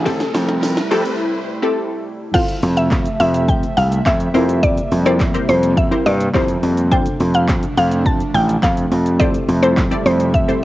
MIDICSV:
0, 0, Header, 1, 7, 480
1, 0, Start_track
1, 0, Key_signature, -1, "major"
1, 0, Tempo, 571429
1, 49, Time_signature, 4, 2, 24, 8
1, 8938, End_track
2, 0, Start_track
2, 0, Title_t, "Synth pluck"
2, 0, Program_c, 0, 84
2, 1966, Note_on_c, 0, 77, 105
2, 2167, Note_off_c, 0, 77, 0
2, 2329, Note_on_c, 0, 76, 89
2, 2429, Note_off_c, 0, 76, 0
2, 2689, Note_on_c, 0, 76, 83
2, 2889, Note_off_c, 0, 76, 0
2, 2929, Note_on_c, 0, 79, 85
2, 3129, Note_off_c, 0, 79, 0
2, 3167, Note_on_c, 0, 77, 86
2, 3267, Note_off_c, 0, 77, 0
2, 3411, Note_on_c, 0, 76, 88
2, 3748, Note_off_c, 0, 76, 0
2, 3889, Note_on_c, 0, 74, 110
2, 4089, Note_off_c, 0, 74, 0
2, 4251, Note_on_c, 0, 72, 86
2, 4350, Note_off_c, 0, 72, 0
2, 4610, Note_on_c, 0, 72, 80
2, 4810, Note_off_c, 0, 72, 0
2, 4849, Note_on_c, 0, 76, 95
2, 5049, Note_off_c, 0, 76, 0
2, 5091, Note_on_c, 0, 74, 85
2, 5190, Note_off_c, 0, 74, 0
2, 5329, Note_on_c, 0, 72, 83
2, 5667, Note_off_c, 0, 72, 0
2, 5809, Note_on_c, 0, 79, 103
2, 6009, Note_off_c, 0, 79, 0
2, 6172, Note_on_c, 0, 77, 87
2, 6271, Note_off_c, 0, 77, 0
2, 6531, Note_on_c, 0, 77, 83
2, 6730, Note_off_c, 0, 77, 0
2, 6769, Note_on_c, 0, 81, 84
2, 6969, Note_off_c, 0, 81, 0
2, 7009, Note_on_c, 0, 79, 88
2, 7109, Note_off_c, 0, 79, 0
2, 7249, Note_on_c, 0, 77, 87
2, 7587, Note_off_c, 0, 77, 0
2, 7725, Note_on_c, 0, 74, 108
2, 7927, Note_off_c, 0, 74, 0
2, 8086, Note_on_c, 0, 72, 82
2, 8187, Note_off_c, 0, 72, 0
2, 8449, Note_on_c, 0, 72, 75
2, 8649, Note_off_c, 0, 72, 0
2, 8686, Note_on_c, 0, 76, 89
2, 8887, Note_off_c, 0, 76, 0
2, 8938, End_track
3, 0, Start_track
3, 0, Title_t, "Synth stab"
3, 0, Program_c, 1, 62
3, 43, Note_on_c, 1, 60, 91
3, 44, Note_on_c, 1, 64, 81
3, 46, Note_on_c, 1, 67, 85
3, 48, Note_on_c, 1, 69, 101
3, 534, Note_off_c, 1, 60, 0
3, 535, Note_off_c, 1, 64, 0
3, 536, Note_off_c, 1, 67, 0
3, 537, Note_off_c, 1, 69, 0
3, 762, Note_on_c, 1, 60, 100
3, 764, Note_on_c, 1, 64, 94
3, 766, Note_on_c, 1, 67, 96
3, 767, Note_on_c, 1, 69, 118
3, 1172, Note_off_c, 1, 60, 0
3, 1173, Note_off_c, 1, 64, 0
3, 1174, Note_off_c, 1, 67, 0
3, 1175, Note_off_c, 1, 69, 0
3, 1364, Note_on_c, 1, 60, 99
3, 1365, Note_on_c, 1, 64, 85
3, 1367, Note_on_c, 1, 67, 87
3, 1369, Note_on_c, 1, 69, 110
3, 1773, Note_off_c, 1, 60, 0
3, 1774, Note_off_c, 1, 64, 0
3, 1775, Note_off_c, 1, 67, 0
3, 1776, Note_off_c, 1, 69, 0
3, 1964, Note_on_c, 1, 60, 77
3, 1966, Note_on_c, 1, 64, 71
3, 1967, Note_on_c, 1, 65, 74
3, 1967, Note_on_c, 1, 69, 71
3, 1969, Note_on_c, 1, 72, 85
3, 2618, Note_off_c, 1, 60, 0
3, 2618, Note_off_c, 1, 64, 0
3, 2619, Note_off_c, 1, 65, 0
3, 2619, Note_off_c, 1, 69, 0
3, 2620, Note_off_c, 1, 72, 0
3, 3645, Note_on_c, 1, 60, 89
3, 3646, Note_on_c, 1, 64, 78
3, 3647, Note_on_c, 1, 67, 76
3, 3648, Note_on_c, 1, 70, 79
3, 3650, Note_on_c, 1, 72, 95
3, 4127, Note_off_c, 1, 60, 0
3, 4127, Note_off_c, 1, 64, 0
3, 4128, Note_off_c, 1, 67, 0
3, 4128, Note_off_c, 1, 70, 0
3, 4129, Note_off_c, 1, 72, 0
3, 4245, Note_on_c, 1, 60, 78
3, 4246, Note_on_c, 1, 64, 72
3, 4247, Note_on_c, 1, 67, 73
3, 4249, Note_on_c, 1, 70, 72
3, 4249, Note_on_c, 1, 74, 89
3, 4409, Note_off_c, 1, 60, 0
3, 4410, Note_off_c, 1, 64, 0
3, 4410, Note_off_c, 1, 67, 0
3, 4411, Note_off_c, 1, 70, 0
3, 4412, Note_off_c, 1, 74, 0
3, 4486, Note_on_c, 1, 60, 84
3, 4487, Note_on_c, 1, 64, 76
3, 4489, Note_on_c, 1, 67, 79
3, 4490, Note_on_c, 1, 70, 77
3, 4490, Note_on_c, 1, 72, 91
3, 4813, Note_off_c, 1, 60, 0
3, 4813, Note_off_c, 1, 64, 0
3, 4814, Note_off_c, 1, 67, 0
3, 4815, Note_off_c, 1, 70, 0
3, 4815, Note_off_c, 1, 72, 0
3, 4966, Note_on_c, 1, 60, 81
3, 4967, Note_on_c, 1, 64, 76
3, 4967, Note_on_c, 1, 67, 73
3, 4969, Note_on_c, 1, 70, 71
3, 4970, Note_on_c, 1, 72, 89
3, 5211, Note_off_c, 1, 60, 0
3, 5212, Note_off_c, 1, 64, 0
3, 5212, Note_off_c, 1, 67, 0
3, 5213, Note_off_c, 1, 70, 0
3, 5213, Note_off_c, 1, 72, 0
3, 5325, Note_on_c, 1, 60, 88
3, 5327, Note_on_c, 1, 64, 81
3, 5328, Note_on_c, 1, 67, 80
3, 5328, Note_on_c, 1, 70, 80
3, 5329, Note_on_c, 1, 72, 101
3, 5653, Note_off_c, 1, 60, 0
3, 5653, Note_off_c, 1, 64, 0
3, 5654, Note_off_c, 1, 67, 0
3, 5654, Note_off_c, 1, 70, 0
3, 5655, Note_off_c, 1, 72, 0
3, 5806, Note_on_c, 1, 60, 73
3, 5807, Note_on_c, 1, 62, 74
3, 5808, Note_on_c, 1, 65, 71
3, 5808, Note_on_c, 1, 69, 70
3, 5810, Note_on_c, 1, 72, 86
3, 6459, Note_off_c, 1, 60, 0
3, 6459, Note_off_c, 1, 62, 0
3, 6460, Note_off_c, 1, 65, 0
3, 6460, Note_off_c, 1, 69, 0
3, 6460, Note_off_c, 1, 72, 0
3, 7724, Note_on_c, 1, 60, 88
3, 7726, Note_on_c, 1, 64, 80
3, 7726, Note_on_c, 1, 67, 78
3, 7728, Note_on_c, 1, 69, 83
3, 7729, Note_on_c, 1, 72, 93
3, 7971, Note_off_c, 1, 60, 0
3, 7971, Note_off_c, 1, 64, 0
3, 7972, Note_off_c, 1, 67, 0
3, 7972, Note_off_c, 1, 69, 0
3, 7973, Note_off_c, 1, 72, 0
3, 8084, Note_on_c, 1, 60, 75
3, 8086, Note_on_c, 1, 64, 74
3, 8087, Note_on_c, 1, 67, 71
3, 8087, Note_on_c, 1, 69, 74
3, 8089, Note_on_c, 1, 72, 87
3, 8249, Note_off_c, 1, 60, 0
3, 8250, Note_off_c, 1, 64, 0
3, 8250, Note_off_c, 1, 67, 0
3, 8251, Note_off_c, 1, 69, 0
3, 8251, Note_off_c, 1, 72, 0
3, 8325, Note_on_c, 1, 60, 83
3, 8326, Note_on_c, 1, 64, 77
3, 8327, Note_on_c, 1, 67, 77
3, 8328, Note_on_c, 1, 69, 78
3, 8329, Note_on_c, 1, 74, 93
3, 8652, Note_off_c, 1, 60, 0
3, 8653, Note_off_c, 1, 64, 0
3, 8654, Note_off_c, 1, 67, 0
3, 8654, Note_off_c, 1, 69, 0
3, 8655, Note_off_c, 1, 74, 0
3, 8805, Note_on_c, 1, 60, 77
3, 8806, Note_on_c, 1, 64, 70
3, 8807, Note_on_c, 1, 67, 71
3, 8808, Note_on_c, 1, 69, 74
3, 8809, Note_on_c, 1, 72, 88
3, 8938, Note_off_c, 1, 60, 0
3, 8938, Note_off_c, 1, 64, 0
3, 8938, Note_off_c, 1, 67, 0
3, 8938, Note_off_c, 1, 69, 0
3, 8938, Note_off_c, 1, 72, 0
3, 8938, End_track
4, 0, Start_track
4, 0, Title_t, "Analog synth pad"
4, 0, Program_c, 2, 89
4, 0, Note_on_c, 2, 48, 84
4, 0, Note_on_c, 2, 57, 79
4, 45, Note_on_c, 2, 55, 79
4, 46, Note_on_c, 2, 64, 97
4, 1934, Note_off_c, 2, 48, 0
4, 1935, Note_off_c, 2, 57, 0
4, 1948, Note_off_c, 2, 55, 0
4, 1948, Note_off_c, 2, 64, 0
4, 1966, Note_on_c, 2, 53, 80
4, 1967, Note_on_c, 2, 48, 87
4, 1967, Note_on_c, 2, 57, 82
4, 1967, Note_on_c, 2, 76, 96
4, 3631, Note_off_c, 2, 48, 0
4, 3631, Note_off_c, 2, 53, 0
4, 3631, Note_off_c, 2, 57, 0
4, 3647, Note_on_c, 2, 55, 81
4, 3648, Note_on_c, 2, 48, 90
4, 3648, Note_on_c, 2, 58, 78
4, 5774, Note_off_c, 2, 76, 0
4, 5786, Note_off_c, 2, 55, 0
4, 5787, Note_off_c, 2, 58, 0
4, 5810, Note_on_c, 2, 53, 81
4, 5810, Note_on_c, 2, 57, 77
4, 5810, Note_on_c, 2, 62, 98
4, 7694, Note_off_c, 2, 48, 0
4, 7710, Note_off_c, 2, 53, 0
4, 7710, Note_off_c, 2, 62, 0
4, 7729, Note_on_c, 2, 76, 98
4, 7730, Note_on_c, 2, 48, 87
4, 7730, Note_on_c, 2, 55, 79
4, 8938, Note_off_c, 2, 48, 0
4, 8938, Note_off_c, 2, 55, 0
4, 8938, Note_off_c, 2, 57, 0
4, 8938, Note_off_c, 2, 76, 0
4, 8938, End_track
5, 0, Start_track
5, 0, Title_t, "Slap bass"
5, 0, Program_c, 3, 36
5, 0, Note_on_c, 3, 33, 91
5, 172, Note_off_c, 3, 33, 0
5, 288, Note_on_c, 3, 41, 98
5, 653, Note_off_c, 3, 41, 0
5, 767, Note_on_c, 3, 41, 101
5, 859, Note_off_c, 3, 41, 0
5, 2209, Note_on_c, 3, 41, 101
5, 2573, Note_off_c, 3, 41, 0
5, 2689, Note_on_c, 3, 41, 95
5, 3053, Note_off_c, 3, 41, 0
5, 3169, Note_on_c, 3, 36, 99
5, 3351, Note_off_c, 3, 36, 0
5, 3409, Note_on_c, 3, 41, 100
5, 3591, Note_off_c, 3, 41, 0
5, 3650, Note_on_c, 3, 41, 106
5, 4014, Note_off_c, 3, 41, 0
5, 4129, Note_on_c, 3, 41, 105
5, 4493, Note_off_c, 3, 41, 0
5, 4611, Note_on_c, 3, 41, 100
5, 4974, Note_off_c, 3, 41, 0
5, 5090, Note_on_c, 3, 43, 101
5, 5271, Note_off_c, 3, 43, 0
5, 5329, Note_on_c, 3, 41, 96
5, 5511, Note_off_c, 3, 41, 0
5, 5569, Note_on_c, 3, 41, 97
5, 5933, Note_off_c, 3, 41, 0
5, 6050, Note_on_c, 3, 41, 105
5, 6414, Note_off_c, 3, 41, 0
5, 6529, Note_on_c, 3, 41, 101
5, 6893, Note_off_c, 3, 41, 0
5, 7008, Note_on_c, 3, 33, 96
5, 7190, Note_off_c, 3, 33, 0
5, 7247, Note_on_c, 3, 41, 94
5, 7430, Note_off_c, 3, 41, 0
5, 7488, Note_on_c, 3, 41, 106
5, 7852, Note_off_c, 3, 41, 0
5, 7967, Note_on_c, 3, 41, 104
5, 8332, Note_off_c, 3, 41, 0
5, 8446, Note_on_c, 3, 41, 97
5, 8811, Note_off_c, 3, 41, 0
5, 8938, End_track
6, 0, Start_track
6, 0, Title_t, "Riser"
6, 0, Program_c, 4, 103
6, 0, Note_on_c, 4, 60, 75
6, 1007, Note_off_c, 4, 60, 0
6, 8938, End_track
7, 0, Start_track
7, 0, Title_t, "Drums"
7, 48, Note_on_c, 9, 36, 123
7, 49, Note_on_c, 9, 38, 108
7, 49, Note_on_c, 9, 54, 45
7, 49, Note_on_c, 9, 82, 76
7, 132, Note_off_c, 9, 36, 0
7, 133, Note_off_c, 9, 38, 0
7, 133, Note_off_c, 9, 54, 0
7, 133, Note_off_c, 9, 82, 0
7, 169, Note_on_c, 9, 38, 108
7, 169, Note_on_c, 9, 42, 61
7, 169, Note_on_c, 9, 82, 63
7, 253, Note_off_c, 9, 38, 0
7, 253, Note_off_c, 9, 42, 0
7, 253, Note_off_c, 9, 82, 0
7, 288, Note_on_c, 9, 54, 53
7, 289, Note_on_c, 9, 46, 71
7, 289, Note_on_c, 9, 82, 53
7, 290, Note_on_c, 9, 38, 114
7, 372, Note_off_c, 9, 54, 0
7, 373, Note_off_c, 9, 46, 0
7, 373, Note_off_c, 9, 82, 0
7, 374, Note_off_c, 9, 38, 0
7, 407, Note_on_c, 9, 42, 71
7, 407, Note_on_c, 9, 82, 71
7, 409, Note_on_c, 9, 38, 110
7, 491, Note_off_c, 9, 42, 0
7, 491, Note_off_c, 9, 82, 0
7, 493, Note_off_c, 9, 38, 0
7, 528, Note_on_c, 9, 38, 116
7, 528, Note_on_c, 9, 82, 73
7, 529, Note_on_c, 9, 54, 97
7, 612, Note_off_c, 9, 38, 0
7, 612, Note_off_c, 9, 82, 0
7, 613, Note_off_c, 9, 54, 0
7, 647, Note_on_c, 9, 42, 66
7, 647, Note_on_c, 9, 82, 65
7, 648, Note_on_c, 9, 38, 118
7, 731, Note_off_c, 9, 42, 0
7, 731, Note_off_c, 9, 82, 0
7, 732, Note_off_c, 9, 38, 0
7, 767, Note_on_c, 9, 46, 74
7, 767, Note_on_c, 9, 82, 52
7, 769, Note_on_c, 9, 54, 51
7, 851, Note_off_c, 9, 46, 0
7, 851, Note_off_c, 9, 82, 0
7, 853, Note_off_c, 9, 54, 0
7, 886, Note_on_c, 9, 42, 85
7, 886, Note_on_c, 9, 54, 35
7, 886, Note_on_c, 9, 82, 86
7, 970, Note_off_c, 9, 42, 0
7, 970, Note_off_c, 9, 54, 0
7, 970, Note_off_c, 9, 82, 0
7, 1968, Note_on_c, 9, 36, 117
7, 1968, Note_on_c, 9, 49, 106
7, 1968, Note_on_c, 9, 82, 79
7, 2052, Note_off_c, 9, 36, 0
7, 2052, Note_off_c, 9, 49, 0
7, 2052, Note_off_c, 9, 82, 0
7, 2087, Note_on_c, 9, 42, 60
7, 2087, Note_on_c, 9, 82, 61
7, 2171, Note_off_c, 9, 42, 0
7, 2171, Note_off_c, 9, 82, 0
7, 2207, Note_on_c, 9, 46, 75
7, 2207, Note_on_c, 9, 82, 54
7, 2291, Note_off_c, 9, 46, 0
7, 2291, Note_off_c, 9, 82, 0
7, 2326, Note_on_c, 9, 42, 72
7, 2326, Note_on_c, 9, 82, 70
7, 2410, Note_off_c, 9, 42, 0
7, 2410, Note_off_c, 9, 82, 0
7, 2448, Note_on_c, 9, 39, 124
7, 2448, Note_on_c, 9, 82, 69
7, 2449, Note_on_c, 9, 36, 110
7, 2455, Note_on_c, 9, 38, 102
7, 2532, Note_off_c, 9, 39, 0
7, 2532, Note_off_c, 9, 82, 0
7, 2533, Note_off_c, 9, 36, 0
7, 2539, Note_off_c, 9, 38, 0
7, 2568, Note_on_c, 9, 42, 64
7, 2568, Note_on_c, 9, 82, 64
7, 2652, Note_off_c, 9, 42, 0
7, 2652, Note_off_c, 9, 82, 0
7, 2691, Note_on_c, 9, 46, 76
7, 2691, Note_on_c, 9, 82, 52
7, 2775, Note_off_c, 9, 46, 0
7, 2775, Note_off_c, 9, 82, 0
7, 2809, Note_on_c, 9, 42, 83
7, 2809, Note_on_c, 9, 82, 85
7, 2893, Note_off_c, 9, 42, 0
7, 2893, Note_off_c, 9, 82, 0
7, 2927, Note_on_c, 9, 36, 116
7, 2928, Note_on_c, 9, 82, 63
7, 3011, Note_off_c, 9, 36, 0
7, 3012, Note_off_c, 9, 82, 0
7, 3051, Note_on_c, 9, 42, 46
7, 3051, Note_on_c, 9, 82, 47
7, 3135, Note_off_c, 9, 42, 0
7, 3135, Note_off_c, 9, 82, 0
7, 3170, Note_on_c, 9, 46, 71
7, 3170, Note_on_c, 9, 82, 47
7, 3254, Note_off_c, 9, 46, 0
7, 3254, Note_off_c, 9, 82, 0
7, 3292, Note_on_c, 9, 42, 84
7, 3292, Note_on_c, 9, 82, 85
7, 3376, Note_off_c, 9, 42, 0
7, 3376, Note_off_c, 9, 82, 0
7, 3409, Note_on_c, 9, 36, 110
7, 3411, Note_on_c, 9, 39, 119
7, 3411, Note_on_c, 9, 82, 83
7, 3418, Note_on_c, 9, 38, 96
7, 3493, Note_off_c, 9, 36, 0
7, 3495, Note_off_c, 9, 39, 0
7, 3495, Note_off_c, 9, 82, 0
7, 3502, Note_off_c, 9, 38, 0
7, 3528, Note_on_c, 9, 42, 54
7, 3528, Note_on_c, 9, 82, 55
7, 3612, Note_off_c, 9, 42, 0
7, 3612, Note_off_c, 9, 82, 0
7, 3650, Note_on_c, 9, 46, 68
7, 3650, Note_on_c, 9, 82, 50
7, 3734, Note_off_c, 9, 46, 0
7, 3734, Note_off_c, 9, 82, 0
7, 3772, Note_on_c, 9, 42, 68
7, 3772, Note_on_c, 9, 82, 71
7, 3856, Note_off_c, 9, 42, 0
7, 3856, Note_off_c, 9, 82, 0
7, 3890, Note_on_c, 9, 36, 116
7, 3890, Note_on_c, 9, 82, 79
7, 3974, Note_off_c, 9, 36, 0
7, 3974, Note_off_c, 9, 82, 0
7, 4010, Note_on_c, 9, 42, 61
7, 4010, Note_on_c, 9, 82, 62
7, 4094, Note_off_c, 9, 42, 0
7, 4094, Note_off_c, 9, 82, 0
7, 4130, Note_on_c, 9, 46, 76
7, 4130, Note_on_c, 9, 82, 55
7, 4214, Note_off_c, 9, 46, 0
7, 4214, Note_off_c, 9, 82, 0
7, 4249, Note_on_c, 9, 42, 69
7, 4249, Note_on_c, 9, 82, 68
7, 4333, Note_off_c, 9, 42, 0
7, 4333, Note_off_c, 9, 82, 0
7, 4370, Note_on_c, 9, 36, 116
7, 4370, Note_on_c, 9, 39, 127
7, 4370, Note_on_c, 9, 82, 73
7, 4377, Note_on_c, 9, 38, 106
7, 4454, Note_off_c, 9, 36, 0
7, 4454, Note_off_c, 9, 39, 0
7, 4454, Note_off_c, 9, 82, 0
7, 4461, Note_off_c, 9, 38, 0
7, 4490, Note_on_c, 9, 42, 63
7, 4490, Note_on_c, 9, 82, 64
7, 4574, Note_off_c, 9, 42, 0
7, 4574, Note_off_c, 9, 82, 0
7, 4610, Note_on_c, 9, 46, 75
7, 4610, Note_on_c, 9, 82, 55
7, 4694, Note_off_c, 9, 46, 0
7, 4694, Note_off_c, 9, 82, 0
7, 4729, Note_on_c, 9, 42, 82
7, 4729, Note_on_c, 9, 82, 87
7, 4813, Note_off_c, 9, 42, 0
7, 4813, Note_off_c, 9, 82, 0
7, 4847, Note_on_c, 9, 36, 114
7, 4848, Note_on_c, 9, 82, 65
7, 4931, Note_off_c, 9, 36, 0
7, 4932, Note_off_c, 9, 82, 0
7, 4971, Note_on_c, 9, 42, 49
7, 4971, Note_on_c, 9, 82, 46
7, 5055, Note_off_c, 9, 42, 0
7, 5055, Note_off_c, 9, 82, 0
7, 5091, Note_on_c, 9, 46, 68
7, 5091, Note_on_c, 9, 82, 48
7, 5175, Note_off_c, 9, 46, 0
7, 5175, Note_off_c, 9, 82, 0
7, 5212, Note_on_c, 9, 42, 85
7, 5212, Note_on_c, 9, 82, 85
7, 5296, Note_off_c, 9, 42, 0
7, 5296, Note_off_c, 9, 82, 0
7, 5329, Note_on_c, 9, 36, 108
7, 5330, Note_on_c, 9, 82, 85
7, 5331, Note_on_c, 9, 39, 122
7, 5338, Note_on_c, 9, 38, 97
7, 5413, Note_off_c, 9, 36, 0
7, 5414, Note_off_c, 9, 82, 0
7, 5415, Note_off_c, 9, 39, 0
7, 5422, Note_off_c, 9, 38, 0
7, 5447, Note_on_c, 9, 42, 56
7, 5447, Note_on_c, 9, 82, 56
7, 5531, Note_off_c, 9, 42, 0
7, 5531, Note_off_c, 9, 82, 0
7, 5570, Note_on_c, 9, 46, 72
7, 5570, Note_on_c, 9, 82, 49
7, 5654, Note_off_c, 9, 46, 0
7, 5654, Note_off_c, 9, 82, 0
7, 5690, Note_on_c, 9, 42, 72
7, 5690, Note_on_c, 9, 82, 69
7, 5774, Note_off_c, 9, 42, 0
7, 5774, Note_off_c, 9, 82, 0
7, 5809, Note_on_c, 9, 36, 120
7, 5809, Note_on_c, 9, 82, 81
7, 5893, Note_off_c, 9, 36, 0
7, 5893, Note_off_c, 9, 82, 0
7, 5928, Note_on_c, 9, 42, 62
7, 5928, Note_on_c, 9, 82, 63
7, 6012, Note_off_c, 9, 42, 0
7, 6012, Note_off_c, 9, 82, 0
7, 6048, Note_on_c, 9, 46, 75
7, 6048, Note_on_c, 9, 82, 54
7, 6132, Note_off_c, 9, 46, 0
7, 6132, Note_off_c, 9, 82, 0
7, 6167, Note_on_c, 9, 42, 70
7, 6167, Note_on_c, 9, 82, 76
7, 6251, Note_off_c, 9, 42, 0
7, 6251, Note_off_c, 9, 82, 0
7, 6288, Note_on_c, 9, 39, 127
7, 6288, Note_on_c, 9, 82, 74
7, 6289, Note_on_c, 9, 36, 116
7, 6296, Note_on_c, 9, 38, 98
7, 6372, Note_off_c, 9, 39, 0
7, 6372, Note_off_c, 9, 82, 0
7, 6373, Note_off_c, 9, 36, 0
7, 6380, Note_off_c, 9, 38, 0
7, 6408, Note_on_c, 9, 42, 65
7, 6408, Note_on_c, 9, 82, 65
7, 6492, Note_off_c, 9, 42, 0
7, 6492, Note_off_c, 9, 82, 0
7, 6530, Note_on_c, 9, 46, 76
7, 6530, Note_on_c, 9, 82, 54
7, 6614, Note_off_c, 9, 46, 0
7, 6614, Note_off_c, 9, 82, 0
7, 6648, Note_on_c, 9, 42, 83
7, 6648, Note_on_c, 9, 82, 83
7, 6732, Note_off_c, 9, 42, 0
7, 6732, Note_off_c, 9, 82, 0
7, 6767, Note_on_c, 9, 36, 111
7, 6768, Note_on_c, 9, 82, 67
7, 6851, Note_off_c, 9, 36, 0
7, 6852, Note_off_c, 9, 82, 0
7, 6890, Note_on_c, 9, 42, 48
7, 6890, Note_on_c, 9, 82, 48
7, 6974, Note_off_c, 9, 42, 0
7, 6974, Note_off_c, 9, 82, 0
7, 7010, Note_on_c, 9, 46, 68
7, 7010, Note_on_c, 9, 82, 51
7, 7094, Note_off_c, 9, 46, 0
7, 7094, Note_off_c, 9, 82, 0
7, 7132, Note_on_c, 9, 42, 82
7, 7132, Note_on_c, 9, 82, 87
7, 7216, Note_off_c, 9, 42, 0
7, 7216, Note_off_c, 9, 82, 0
7, 7248, Note_on_c, 9, 36, 114
7, 7250, Note_on_c, 9, 39, 120
7, 7250, Note_on_c, 9, 82, 82
7, 7257, Note_on_c, 9, 38, 99
7, 7332, Note_off_c, 9, 36, 0
7, 7334, Note_off_c, 9, 39, 0
7, 7334, Note_off_c, 9, 82, 0
7, 7341, Note_off_c, 9, 38, 0
7, 7368, Note_on_c, 9, 42, 58
7, 7368, Note_on_c, 9, 82, 55
7, 7452, Note_off_c, 9, 42, 0
7, 7452, Note_off_c, 9, 82, 0
7, 7489, Note_on_c, 9, 46, 70
7, 7489, Note_on_c, 9, 82, 52
7, 7573, Note_off_c, 9, 46, 0
7, 7573, Note_off_c, 9, 82, 0
7, 7610, Note_on_c, 9, 42, 72
7, 7610, Note_on_c, 9, 82, 70
7, 7694, Note_off_c, 9, 42, 0
7, 7694, Note_off_c, 9, 82, 0
7, 7728, Note_on_c, 9, 36, 121
7, 7729, Note_on_c, 9, 82, 77
7, 7812, Note_off_c, 9, 36, 0
7, 7813, Note_off_c, 9, 82, 0
7, 7848, Note_on_c, 9, 42, 62
7, 7848, Note_on_c, 9, 82, 60
7, 7932, Note_off_c, 9, 42, 0
7, 7932, Note_off_c, 9, 82, 0
7, 7968, Note_on_c, 9, 46, 73
7, 7968, Note_on_c, 9, 82, 57
7, 8052, Note_off_c, 9, 46, 0
7, 8052, Note_off_c, 9, 82, 0
7, 8088, Note_on_c, 9, 42, 73
7, 8088, Note_on_c, 9, 82, 76
7, 8172, Note_off_c, 9, 42, 0
7, 8172, Note_off_c, 9, 82, 0
7, 8208, Note_on_c, 9, 36, 115
7, 8209, Note_on_c, 9, 39, 122
7, 8209, Note_on_c, 9, 82, 70
7, 8216, Note_on_c, 9, 38, 104
7, 8292, Note_off_c, 9, 36, 0
7, 8293, Note_off_c, 9, 39, 0
7, 8293, Note_off_c, 9, 82, 0
7, 8300, Note_off_c, 9, 38, 0
7, 8328, Note_on_c, 9, 42, 63
7, 8328, Note_on_c, 9, 82, 62
7, 8412, Note_off_c, 9, 42, 0
7, 8412, Note_off_c, 9, 82, 0
7, 8450, Note_on_c, 9, 46, 74
7, 8450, Note_on_c, 9, 82, 52
7, 8534, Note_off_c, 9, 46, 0
7, 8534, Note_off_c, 9, 82, 0
7, 8567, Note_on_c, 9, 42, 80
7, 8567, Note_on_c, 9, 82, 85
7, 8651, Note_off_c, 9, 42, 0
7, 8651, Note_off_c, 9, 82, 0
7, 8685, Note_on_c, 9, 36, 116
7, 8687, Note_on_c, 9, 82, 62
7, 8769, Note_off_c, 9, 36, 0
7, 8771, Note_off_c, 9, 82, 0
7, 8810, Note_on_c, 9, 42, 51
7, 8810, Note_on_c, 9, 82, 48
7, 8894, Note_off_c, 9, 42, 0
7, 8894, Note_off_c, 9, 82, 0
7, 8938, End_track
0, 0, End_of_file